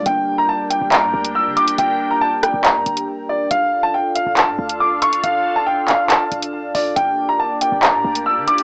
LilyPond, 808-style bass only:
\new Staff \with { instrumentName = "808-style bass" } { \clef bass \time 4/4 \key d \minor \tempo 4 = 139 g,,4.~ g,,16 g,,8 bes,16 d,8. d16 r8 | g,,4 a,,8. g,,8 g,16 g,,8 r4 | d,,8. e,,16 r8. cis,,8 a,16 d,4. | d,,2~ d,,8 d,,4 d,,8 |
g,,4.~ g,,16 g,,8 bes,16 d,8. d16 r8 | }